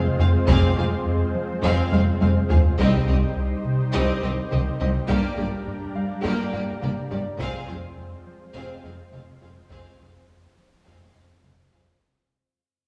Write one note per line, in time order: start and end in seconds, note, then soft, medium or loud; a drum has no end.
0.00 2.61 G#3 medium
0.00 2.78 G#3 medium
0.00 2.61 C4 medium
0.00 2.78 C4 medium
0.00 2.79 F4 medium
0.00 2.78 C5 medium
0.19 0.27 F1 medium
0.19 0.27 F2 medium
0.19 0.37 F2 medium
0.19 0.27 C4 medium
0.19 0.37 F4 medium
0.19 0.28 G#4 medium
0.19 0.28 F5 medium
0.47 0.56 F1 medium
0.47 0.56 F2 medium
0.47 0.66 F2 loud
0.47 0.66 F3 loud
0.47 0.75 C4 medium
0.47 0.75 G#4 medium
0.47 0.75 F5 medium
0.47 2.17 D6 medium
0.47 taiko loud
0.76 0.85 F1 medium
0.76 0.84 F2 medium
0.76 0.94 F2 medium
0.76 0.85 C4 medium
0.76 0.94 F4 medium
0.76 0.85 G#4 medium
0.76 0.86 F5 medium
1.06 1.23 F2 medium
1.35 1.52 F3 medium
1.63 1.71 F1 medium
1.63 1.71 F2 loud
1.63 1.81 F2 loud
1.63 1.81 F3 loud
1.63 1.91 C4 medium
1.63 1.90 G#4 medium
1.63 1.91 F5 medium
1.92 2.01 F1 medium
1.92 2.10 F2 medium
1.92 2.00 F2 medium
1.92 2.10 G#3 medium
1.92 2.00 C4 medium
1.92 2.00 G#4 medium
1.92 2.00 F5 medium
1.92 3.61 F6 medium
1.92 taiko high medium
2.21 2.30 F1 medium
2.21 2.39 F2 medium
2.21 2.30 F2 medium
2.21 2.38 G#3 medium
2.21 2.29 C4 medium
2.21 2.29 G#4 medium
2.21 2.29 F5 medium
2.21 taiko high loud
2.50 2.58 F1 medium
2.50 2.67 F2 medium
2.50 2.58 F2 medium
2.50 2.58 C4 medium
2.50 2.68 F4 medium
2.50 2.58 G#4 medium
2.50 2.58 F5 medium
2.50 taiko low loud
2.78 2.96 C2 loud
2.78 2.87 C2 medium
2.78 2.87 C2 loud
2.78 2.96 C3 loud
2.78 2.99 G3 medium
2.78 7.40 G3 medium
2.78 3.06 C4 medium
2.78 2.99 D#4 medium
2.78 5.10 D#4 medium
2.78 3.06 G4 medium
2.78 7.41 G4 medium
2.78 5.06 C5 medium
2.78 3.05 D#5 medium
2.78 taiko loud
3.07 3.25 C2 medium
3.07 3.16 C2 medium
3.07 3.16 C4 medium
3.07 3.25 C4 medium
3.07 3.15 G4 medium
3.07 3.15 D#5 medium
3.36 3.53 C2 medium
3.65 3.82 C3 medium
3.94 4.11 C2 loud
3.94 4.02 C2 loud
3.94 4.12 C3 loud
3.94 4.15 G3 medium
3.94 4.21 C4 loud
3.94 4.15 D#4 medium
3.94 4.21 G4 loud
3.94 4.21 D#5 loud
3.94 5.63 D6 medium
4.22 4.40 C2 medium
4.22 4.31 C2 medium
4.22 4.40 D#3 medium
4.22 4.31 C4 medium
4.22 4.31 G4 medium
4.22 4.31 D#5 medium
4.51 4.60 C2 medium
4.51 4.69 C2 medium
4.51 4.69 D#3 medium
4.51 4.60 C4 medium
4.51 4.59 G4 medium
4.51 4.60 D#5 medium
4.51 taiko mid medium
4.80 4.89 C2 medium
4.80 4.98 C2 medium
4.80 4.88 C4 medium
4.80 4.98 C4 medium
4.80 4.88 G4 medium
4.80 4.88 D#5 medium
5.09 5.17 G1 loud
5.09 5.17 G2 loud
5.09 5.27 G2 loud
5.09 5.27 G3 loud
5.09 5.29 A#3 medium
5.09 5.36 A#3 loud
5.09 5.29 D4 loud
5.09 7.41 D4 medium
5.09 5.35 G4 loud
5.09 7.41 A#4 medium
5.09 5.37 D5 medium
5.09 taiko loud
5.37 5.46 G1 medium
5.37 5.55 G2 medium
5.37 5.46 G2 medium
5.37 5.46 A#3 medium
5.37 5.45 G4 medium
5.37 5.55 G4 medium
5.37 5.47 D5 medium
5.67 5.85 G2 medium
5.95 6.13 G3 medium
5.95 7.65 F5 medium
6.24 6.33 G1 loud
6.24 6.42 G2 loud
6.24 6.32 G2 loud
6.24 6.42 G3 loud
6.24 6.45 A#3 loud
6.24 6.51 A#3 loud
6.24 6.45 D4 loud
6.24 6.51 G4 loud
6.24 6.52 D5 medium
6.53 6.62 G1 medium
6.53 6.61 G2 medium
6.53 6.71 G2 medium
6.53 6.61 A#3 medium
6.53 6.71 A#3 medium
6.53 6.61 G4 medium
6.53 6.63 D5 medium
6.82 6.90 G1 medium
6.82 6.90 G2 medium
6.82 6.99 G2 medium
6.82 6.90 A#3 medium
6.82 7.00 A#3 medium
6.82 6.91 G4 medium
6.82 6.91 D5 medium
6.82 taiko mid medium
7.11 7.19 G1 medium
7.11 7.19 G2 medium
7.11 7.28 G2 medium
7.11 7.19 A#3 medium
7.11 7.29 G4 medium
7.11 7.19 G4 medium
7.11 7.19 D5 medium
7.11 8.80 D5 medium
7.39 7.47 F1 loud
7.39 7.47 F2 loud
7.39 7.57 F2 loud
7.39 7.57 F3 loud
7.39 12.02 G#3 medium
7.39 7.60 G#3 medium
7.39 7.67 C4 loud
7.39 7.60 C4 medium
7.39 12.02 C4 medium
7.39 12.02 F4 medium
7.39 7.67 G#4 loud
7.39 12.02 C5 medium
7.39 7.67 F5 loud
7.39 taiko loud
7.68 7.76 F1 medium
7.68 7.76 F2 medium
7.68 7.86 F2 medium
7.68 7.77 C4 medium
7.68 7.86 F4 medium
7.68 7.77 G#4 medium
7.68 7.76 F5 medium
7.97 8.15 F2 medium
8.27 8.44 F3 medium
8.54 8.62 F1 loud
8.54 8.63 F2 loud
8.54 8.73 F2 loud
8.54 8.73 F3 loud
8.54 8.76 G#3 medium
8.54 8.82 C4 medium
8.54 8.76 C4 medium
8.54 8.82 G#4 loud
8.54 8.82 F5 loud
8.84 8.92 F1 medium
8.84 8.92 F2 medium
8.84 9.01 F2 medium
8.84 9.02 G#3 medium
8.84 8.92 C4 medium
8.84 8.92 G#4 medium
8.84 8.92 F5 medium
9.12 9.20 F1 medium
9.12 9.21 F2 medium
9.12 9.31 F2 medium
9.12 9.30 G#3 medium
9.12 9.21 C4 medium
9.12 9.21 G#4 medium
9.12 9.21 F5 medium
9.12 taiko mid medium
9.41 9.50 F1 medium
9.41 9.49 F2 medium
9.41 9.59 F2 medium
9.41 9.50 C4 medium
9.41 9.59 F4 medium
9.41 9.50 G#4 medium
9.41 9.50 F5 medium
9.70 9.79 F1 medium
9.70 9.78 F2 medium
9.70 9.88 F2 loud
9.70 9.88 F3 loud
9.70 9.92 G#3 medium
9.70 9.98 C4 medium
9.70 9.92 C4 medium
9.70 9.98 G#4 loud
9.70 9.98 F5 medium
9.70 taiko loud
9.99 10.07 F1 medium
9.99 10.07 F2 medium
9.99 10.17 F2 medium
9.99 10.08 C4 medium
9.99 10.17 F4 medium
9.99 10.08 G#4 soft
9.99 10.08 F5 medium
10.29 10.46 F2 medium
10.57 10.75 F3 medium
10.86 10.94 F1 medium
10.86 10.94 F2 medium
10.86 11.04 F2 loud
10.86 11.04 F3 loud
10.86 11.07 G#3 medium
10.86 11.13 C4 medium
10.86 11.07 C4 medium
10.86 11.13 G#4 medium
10.86 11.13 F5 medium
11.15 11.23 F1 medium
11.15 11.33 F2 medium
11.15 11.24 F2 medium
11.15 11.33 G#3 medium
11.15 11.23 C4 medium
11.15 11.24 G#4 medium
11.15 11.23 F5 medium
11.43 11.53 F1 medium
11.43 11.62 F2 medium
11.43 11.53 F2 medium
11.43 11.61 G#3 medium
11.43 11.51 C4 medium
11.43 11.53 G#4 medium
11.43 11.51 F5 medium
11.43 taiko mid medium
11.72 11.81 F1 medium
11.72 11.81 F2 medium
11.72 11.91 F2 medium
11.72 11.81 C4 medium
11.72 11.90 F4 medium
11.72 11.82 G#4 medium
11.72 11.80 F5 medium